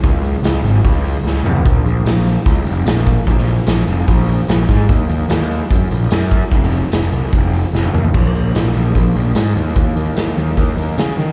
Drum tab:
CC |----------------|----------------|----------------|----------------|
HH |x-x-x-x-x-x-----|x-x-x-x-x-x-x-x-|x-x-x-x-x-x-x-x-|x-x-x-x-x-x-x-x-|
TB |----x-----------|----x-------x---|----x-------x---|----x-------x---|
SD |----o-------o---|----o-------o---|-o--o-------o-o-|----o-------o---|
T1 |----------------|----------------|----------------|----------------|
T2 |--------------o-|----------------|----------------|----------------|
FT |---------------o|----------------|----------------|----------------|
BD |o-------o-------|o-------o-----o-|o-------o-----o-|o-------o-----o-|

CC |----------------|x---------------|----------------|
HH |x-x-x-x-x-x-----|--x-x-x-x-x-x-x-|x-x-x-x-x-x-x-x-|
TB |----x-----------|----x-------x---|----x-------x---|
SD |-o--o-------o---|----o-------o---|----o-------o---|
T1 |-------------o--|----------------|----------------|
T2 |--------------o-|----------------|----------------|
FT |---------------o|----------------|----------------|
BD |o-------o-------|o-------o-------|o-------o-------|